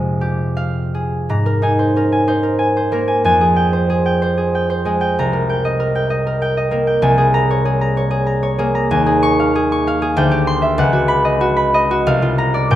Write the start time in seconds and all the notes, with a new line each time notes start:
Already playing: F2 C3 G#3 F4 G4
0.21 G4
0.57 F5
0.94 G#4
1.29 G#2 A#5
1.46 A#4
1.62 D#4 G#5
1.79 C5
1.96 C#4 A#4
2.12 G#5
2.27 D#4 C5
2.43 A#4
2.59 G#5
2.77 C5
2.92 A#3 A#4
3.08 G#5
3.24 F2 G#5
3.41 G#4
3.56 G5
3.73 C5
3.90 G#4
4.06 G5
4.22 C5
4.37 G#4
4.55 G5
4.70 C5
4.85 G#3 G#4
5.01 G5
5.19 C2 A#5
5.33 A#4
5.49 G5
5.65 D#5
5.80 A#4
5.95 G5
6.10 D#5
6.27 A#4
6.42 G5
6.57 D#5
6.71 A#3 A#4
6.87 G5
7.02 C2 G#5
7.18 G#4
7.34 A#5
7.51 C#5
7.65 G#4
7.81 A#5
7.97 C#5
8.11 G#4
8.26 A#5
8.43 C#5
8.58 A#3 G#4
8.75 A#5
8.91 D#2 G#5
9.06 G#4
9.23 C#6
9.40 F5
9.55 G#4
9.72 C#6
9.87 F5
10.02 G#4
10.16 D2 G5
10.31 G4
10.47 C6
10.62 E5
10.78 C#2 F#5
10.93 F#4
11.08 B5
11.25 D#5
11.41 F#4
11.57 B5
11.74 D#5
11.91 F#4
12.07 C2 F5
12.22 F4
12.38 A#5
12.54 D5
12.71 A#2 G5